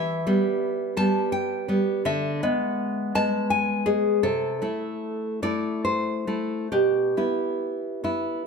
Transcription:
0.00 0.25 E3 medium
0.00 0.92 E5 loud
0.27 0.96 G3 medium
0.27 0.96 B3 medium
0.97 1.67 G3 medium
0.97 1.68 B3 medium
0.97 1.31 A5 loud
1.32 2.02 G5 medium
1.68 2.01 G3 medium
1.68 2.02 B3 medium
2.05 2.41 D3 medium
2.05 3.10 E5 medium
2.43 3.14 G#3 medium
2.43 3.14 B3 medium
3.15 3.85 G#3 medium
3.15 3.85 B3 medium
3.15 3.49 A5 loud
3.50 3.85 G#5 medium
3.86 4.20 G#3 medium
3.86 4.20 B3 medium
3.86 4.22 G#4 medium
4.23 4.60 C3 medium
4.23 5.38 A4 medium
4.62 5.41 A3 medium
4.62 5.42 E4 medium
5.42 6.26 A3 soft
5.42 6.27 E4 medium
5.42 5.83 D5 medium
5.85 6.67 C5 medium
6.27 6.67 A3 soft
6.27 6.67 E4 medium
6.72 7.15 B2 medium
6.72 8.42 G4 medium
7.17 8.03 B3 soft
7.17 8.03 E4 medium
8.04 8.42 B3 medium
8.04 8.42 E4 medium

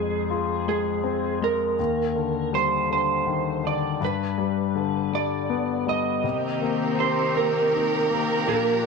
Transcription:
0.00 1.75 F2 soft
0.00 0.66 G#3 soft
0.00 0.68 G#4 medium
0.30 1.75 F4 soft
0.68 1.40 G#3 soft
0.68 1.38 G#4 medium
1.04 1.76 C4 soft
1.41 1.78 G#3 soft
1.41 2.55 A#4 medium
1.79 3.97 D#2 medium
2.16 2.88 D3 soft
2.53 3.98 G3 soft
2.53 2.89 C5 medium
2.90 3.62 D3 soft
2.90 3.68 C5 medium
3.27 3.99 D#3 soft
3.64 4.00 D3 soft
3.64 4.04 D5 medium
4.01 6.20 G2 medium
4.01 5.18 B4 medium
4.38 5.11 G3 soft
4.75 6.20 D3 soft
5.12 5.85 G3 soft
5.12 5.89 D5 medium
5.50 6.22 B3 soft
5.87 6.23 G3 soft
5.87 7.03 D#5 medium
6.24 8.43 C3 soft
6.24 8.45 D#3 medium
6.24 8.86 A#3 medium
6.24 8.45 C4 medium
6.24 8.86 G4 medium
6.24 8.86 A#4 medium
6.61 7.34 A#3 soft
6.99 8.43 G4 soft
6.99 7.37 C5 medium
7.35 8.09 A#3 soft
7.35 8.48 A#4 medium
7.73 8.45 D#4 soft
8.10 8.46 A#3 soft
8.47 8.86 A#2 medium
8.47 8.86 F3 medium
8.47 8.86 D4 medium
8.47 8.86 A#4 medium

